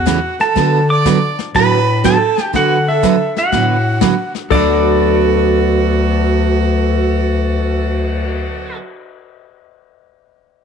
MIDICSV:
0, 0, Header, 1, 8, 480
1, 0, Start_track
1, 0, Key_signature, 2, "major"
1, 0, Tempo, 494641
1, 541, Time_signature, 4, 2, 24, 8
1, 10330, End_track
2, 0, Start_track
2, 0, Title_t, "Pedal steel guitar"
2, 0, Program_c, 0, 26
2, 0, Note_on_c, 0, 78, 92
2, 393, Note_off_c, 0, 78, 0
2, 397, Note_on_c, 0, 81, 101
2, 838, Note_off_c, 0, 81, 0
2, 875, Note_on_c, 0, 86, 103
2, 1317, Note_off_c, 0, 86, 0
2, 1511, Note_on_c, 0, 83, 116
2, 1992, Note_on_c, 0, 81, 100
2, 2000, Note_off_c, 0, 83, 0
2, 2433, Note_off_c, 0, 81, 0
2, 2484, Note_on_c, 0, 78, 88
2, 2799, Note_on_c, 0, 76, 91
2, 2805, Note_off_c, 0, 78, 0
2, 3238, Note_off_c, 0, 76, 0
2, 3285, Note_on_c, 0, 78, 85
2, 4195, Note_off_c, 0, 78, 0
2, 4383, Note_on_c, 0, 74, 89
2, 8504, Note_off_c, 0, 74, 0
2, 10330, End_track
3, 0, Start_track
3, 0, Title_t, "Electric slide guitar"
3, 0, Program_c, 1, 29
3, 4371, Note_on_c, 1, 69, 93
3, 8492, Note_off_c, 1, 69, 0
3, 10330, End_track
4, 0, Start_track
4, 0, Title_t, "Fiddle"
4, 0, Program_c, 2, 110
4, 0, Note_on_c, 2, 66, 79
4, 347, Note_off_c, 2, 66, 0
4, 389, Note_on_c, 2, 69, 89
4, 834, Note_off_c, 2, 69, 0
4, 884, Note_on_c, 2, 74, 90
4, 1321, Note_off_c, 2, 74, 0
4, 1510, Note_on_c, 2, 71, 100
4, 1952, Note_off_c, 2, 71, 0
4, 1998, Note_on_c, 2, 69, 90
4, 2436, Note_off_c, 2, 69, 0
4, 2475, Note_on_c, 2, 66, 87
4, 2769, Note_off_c, 2, 66, 0
4, 2790, Note_on_c, 2, 69, 73
4, 3234, Note_off_c, 2, 69, 0
4, 3278, Note_on_c, 2, 66, 65
4, 4192, Note_off_c, 2, 66, 0
4, 4375, Note_on_c, 2, 66, 86
4, 8496, Note_off_c, 2, 66, 0
4, 10330, End_track
5, 0, Start_track
5, 0, Title_t, "Steel-string acoustic guitar"
5, 0, Program_c, 3, 25
5, 54, Note_on_c, 3, 49, 76
5, 59, Note_on_c, 3, 52, 77
5, 61, Note_on_c, 3, 57, 72
5, 64, Note_on_c, 3, 61, 85
5, 66, Note_on_c, 3, 66, 85
5, 176, Note_off_c, 3, 49, 0
5, 178, Note_off_c, 3, 52, 0
5, 179, Note_off_c, 3, 57, 0
5, 180, Note_off_c, 3, 61, 0
5, 181, Note_off_c, 3, 66, 0
5, 537, Note_on_c, 3, 50, 54
5, 540, Note_on_c, 3, 54, 67
5, 541, Note_on_c, 3, 59, 60
5, 544, Note_on_c, 3, 66, 59
5, 546, Note_on_c, 3, 71, 68
5, 761, Note_off_c, 3, 50, 0
5, 763, Note_off_c, 3, 54, 0
5, 763, Note_off_c, 3, 59, 0
5, 765, Note_off_c, 3, 66, 0
5, 766, Note_off_c, 3, 71, 0
5, 1017, Note_on_c, 3, 50, 69
5, 1024, Note_on_c, 3, 54, 70
5, 1027, Note_on_c, 3, 59, 83
5, 1028, Note_on_c, 3, 71, 90
5, 1029, Note_on_c, 3, 66, 77
5, 1137, Note_off_c, 3, 50, 0
5, 1140, Note_off_c, 3, 54, 0
5, 1142, Note_off_c, 3, 59, 0
5, 1142, Note_off_c, 3, 66, 0
5, 1142, Note_off_c, 3, 71, 0
5, 1498, Note_on_c, 3, 50, 58
5, 1503, Note_on_c, 3, 54, 57
5, 1506, Note_on_c, 3, 59, 60
5, 1509, Note_on_c, 3, 66, 59
5, 1512, Note_on_c, 3, 71, 63
5, 1721, Note_off_c, 3, 50, 0
5, 1724, Note_off_c, 3, 54, 0
5, 1725, Note_off_c, 3, 59, 0
5, 1727, Note_off_c, 3, 66, 0
5, 1729, Note_off_c, 3, 71, 0
5, 1977, Note_on_c, 3, 50, 77
5, 1981, Note_on_c, 3, 54, 81
5, 1982, Note_on_c, 3, 59, 73
5, 1984, Note_on_c, 3, 66, 83
5, 1988, Note_on_c, 3, 71, 84
5, 2096, Note_off_c, 3, 50, 0
5, 2098, Note_off_c, 3, 54, 0
5, 2099, Note_off_c, 3, 59, 0
5, 2100, Note_off_c, 3, 66, 0
5, 2102, Note_off_c, 3, 71, 0
5, 2455, Note_on_c, 3, 50, 62
5, 2457, Note_on_c, 3, 54, 55
5, 2461, Note_on_c, 3, 59, 64
5, 2461, Note_on_c, 3, 66, 65
5, 2465, Note_on_c, 3, 71, 62
5, 2680, Note_off_c, 3, 50, 0
5, 2681, Note_off_c, 3, 54, 0
5, 2683, Note_off_c, 3, 59, 0
5, 2683, Note_off_c, 3, 66, 0
5, 2685, Note_off_c, 3, 71, 0
5, 2936, Note_on_c, 3, 50, 69
5, 2943, Note_on_c, 3, 54, 76
5, 2945, Note_on_c, 3, 59, 76
5, 2947, Note_on_c, 3, 66, 76
5, 2950, Note_on_c, 3, 71, 68
5, 3056, Note_off_c, 3, 50, 0
5, 3059, Note_off_c, 3, 54, 0
5, 3060, Note_off_c, 3, 59, 0
5, 3061, Note_off_c, 3, 66, 0
5, 3062, Note_off_c, 3, 71, 0
5, 3415, Note_on_c, 3, 50, 51
5, 3420, Note_on_c, 3, 59, 59
5, 3421, Note_on_c, 3, 54, 51
5, 3425, Note_on_c, 3, 66, 59
5, 3429, Note_on_c, 3, 71, 54
5, 3639, Note_off_c, 3, 50, 0
5, 3642, Note_off_c, 3, 59, 0
5, 3643, Note_off_c, 3, 54, 0
5, 3644, Note_off_c, 3, 66, 0
5, 3646, Note_off_c, 3, 71, 0
5, 3892, Note_on_c, 3, 54, 84
5, 3893, Note_on_c, 3, 50, 76
5, 3899, Note_on_c, 3, 59, 81
5, 3899, Note_on_c, 3, 66, 87
5, 3902, Note_on_c, 3, 71, 84
5, 4013, Note_off_c, 3, 54, 0
5, 4014, Note_off_c, 3, 50, 0
5, 4017, Note_off_c, 3, 59, 0
5, 4017, Note_off_c, 3, 66, 0
5, 4018, Note_off_c, 3, 71, 0
5, 4373, Note_on_c, 3, 50, 71
5, 4383, Note_on_c, 3, 54, 80
5, 4389, Note_on_c, 3, 59, 76
5, 4397, Note_on_c, 3, 66, 91
5, 4406, Note_on_c, 3, 71, 77
5, 8533, Note_off_c, 3, 50, 0
5, 8542, Note_off_c, 3, 54, 0
5, 8548, Note_off_c, 3, 59, 0
5, 8557, Note_off_c, 3, 66, 0
5, 8565, Note_off_c, 3, 71, 0
5, 10330, End_track
6, 0, Start_track
6, 0, Title_t, "Bass clarinet"
6, 0, Program_c, 4, 71
6, 0, Note_on_c, 4, 40, 81
6, 348, Note_off_c, 4, 40, 0
6, 540, Note_on_c, 4, 50, 103
6, 1308, Note_off_c, 4, 50, 0
6, 1500, Note_on_c, 4, 45, 86
6, 2268, Note_off_c, 4, 45, 0
6, 2460, Note_on_c, 4, 50, 89
6, 3228, Note_off_c, 4, 50, 0
6, 3416, Note_on_c, 4, 45, 86
6, 4037, Note_off_c, 4, 45, 0
6, 4371, Note_on_c, 4, 38, 98
6, 8491, Note_off_c, 4, 38, 0
6, 10330, End_track
7, 0, Start_track
7, 0, Title_t, "Cymbal swell"
7, 4702, Note_on_c, 9, 59, 44
7, 8127, Note_off_c, 9, 59, 0
7, 10330, End_track
8, 0, Start_track
8, 0, Title_t, "Drums"
8, 61, Note_on_c, 9, 36, 22
8, 65, Note_on_c, 9, 38, 80
8, 65, Note_on_c, 9, 44, 64
8, 158, Note_off_c, 9, 36, 0
8, 162, Note_off_c, 9, 38, 0
8, 162, Note_off_c, 9, 44, 0
8, 385, Note_on_c, 9, 38, 41
8, 482, Note_off_c, 9, 38, 0
8, 542, Note_on_c, 9, 36, 26
8, 544, Note_on_c, 9, 25, 58
8, 544, Note_on_c, 9, 38, 46
8, 639, Note_off_c, 9, 36, 0
8, 641, Note_off_c, 9, 38, 0
8, 1023, Note_on_c, 9, 36, 26
8, 1025, Note_on_c, 9, 38, 70
8, 1025, Note_on_c, 9, 44, 58
8, 1120, Note_off_c, 9, 36, 0
8, 1122, Note_off_c, 9, 38, 0
8, 1122, Note_off_c, 9, 44, 0
8, 1346, Note_on_c, 9, 38, 42
8, 1443, Note_off_c, 9, 38, 0
8, 1502, Note_off_c, 9, 25, 0
8, 1502, Note_on_c, 9, 25, 45
8, 1502, Note_on_c, 9, 36, 27
8, 1502, Note_on_c, 9, 38, 51
8, 1599, Note_off_c, 9, 36, 0
8, 1599, Note_off_c, 9, 38, 0
8, 1983, Note_on_c, 9, 36, 28
8, 1983, Note_on_c, 9, 38, 83
8, 1983, Note_on_c, 9, 44, 66
8, 2080, Note_off_c, 9, 36, 0
8, 2080, Note_off_c, 9, 38, 0
8, 2080, Note_off_c, 9, 44, 0
8, 2306, Note_on_c, 9, 38, 41
8, 2403, Note_off_c, 9, 38, 0
8, 2461, Note_on_c, 9, 36, 22
8, 2465, Note_off_c, 9, 25, 0
8, 2465, Note_on_c, 9, 25, 49
8, 2465, Note_on_c, 9, 38, 47
8, 2558, Note_off_c, 9, 36, 0
8, 2562, Note_off_c, 9, 38, 0
8, 2939, Note_on_c, 9, 36, 23
8, 2942, Note_on_c, 9, 38, 67
8, 2942, Note_on_c, 9, 44, 59
8, 3036, Note_off_c, 9, 36, 0
8, 3039, Note_off_c, 9, 38, 0
8, 3039, Note_off_c, 9, 44, 0
8, 3265, Note_on_c, 9, 38, 45
8, 3362, Note_off_c, 9, 38, 0
8, 3418, Note_on_c, 9, 36, 18
8, 3419, Note_off_c, 9, 25, 0
8, 3419, Note_on_c, 9, 25, 53
8, 3419, Note_on_c, 9, 38, 48
8, 3515, Note_off_c, 9, 36, 0
8, 3516, Note_off_c, 9, 38, 0
8, 3892, Note_on_c, 9, 38, 80
8, 3892, Note_on_c, 9, 44, 57
8, 3895, Note_on_c, 9, 36, 27
8, 3989, Note_off_c, 9, 38, 0
8, 3989, Note_off_c, 9, 44, 0
8, 3992, Note_off_c, 9, 36, 0
8, 4218, Note_on_c, 9, 38, 39
8, 4315, Note_off_c, 9, 38, 0
8, 4374, Note_on_c, 9, 49, 69
8, 4375, Note_on_c, 9, 36, 57
8, 4472, Note_off_c, 9, 36, 0
8, 4472, Note_off_c, 9, 49, 0
8, 4765, Note_off_c, 9, 25, 0
8, 10330, End_track
0, 0, End_of_file